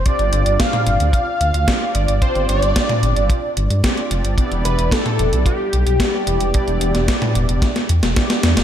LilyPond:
<<
  \new Staff \with { instrumentName = "Analog synth lead" } { \time 4/4 \key g \mixolydian \tempo 4 = 111 d''4 f''4 f''4. d''8 | c''8 d''2 r4. | r8 b'8 a'4 g'2~ | g'2. r4 | }
  \new Staff \with { instrumentName = "Analog polysynth" } { \time 4/4 \key g \mixolydian <c' d' f' g' d''>4.~ <c' d' f' g' d''>16 <c' d' f' g' d''>8 r8. <c' d' f' g' d''>4 | <c' d' f' g' d''>4.~ <c' d' f' g' d''>16 <c' d' f' g' d''>8 r8. <c' d' f' g' d''>4 | <b d' e' g' d''>4.~ <b d' e' g' d''>16 <b d' e' g' d''>8 r8. <b d' e' g' d''>4 | <b d' e' g' d''>4.~ <b d' e' g' d''>16 <b d' e' g' d''>8 r8. <b d' e' g' d''>4 | }
  \new Staff \with { instrumentName = "Detuned saw bass" } { \clef bass \time 4/4 \key g \mixolydian r16 g,,16 g,,16 g,,16 r8 g,,16 d,16 r8 d,16 d,16 r8 g,,16 g,,16 | r16 g,,16 g,,16 g,,16 r8 g,,16 g,,16 r8 g,,16 g,16 r8 f,,16 g,,16 | r16 e,,16 e,,16 e,,16 r8 e,,16 b,,16 r8 b,,16 b,,16 r8 e,,16 e,,16 | r16 e,,16 e,,16 e,,16 r8 e,,16 e,,16 r8 e,16 e,,16 r8 e,16 e,,16 | }
  \new DrumStaff \with { instrumentName = "Drums" } \drummode { \time 4/4 <hh bd>16 hh16 hh16 hh16 <hh bd sn>16 <hh toml>16 hh16 hh16 <hh bd>8 hh16 hh16 <hh bd sn>8 hh16 hh16 | <hh bd>16 hh16 hh16 hh16 <hh bd sn>16 <hh toml>16 hh16 hh16 <hh bd>8 hh16 hh16 <hh bd sn>16 hh16 hh16 hh16 | <hh bd>16 hh16 hh16 hh16 <hh bd sn>16 <hh toml>16 hh16 hh16 <hh bd>8 hh16 hh16 <hh bd sn>8 hh16 hh16 | <hh bd>16 hh16 hh16 <hh sn>16 <hh bd sn>16 <hh toml>16 hh16 hh16 <hh bd sn>16 <hh sn>16 hh16 <hh sn>16 <hh bd sn>16 <hh sn>16 <hh sn>16 <hh sn>16 | }
>>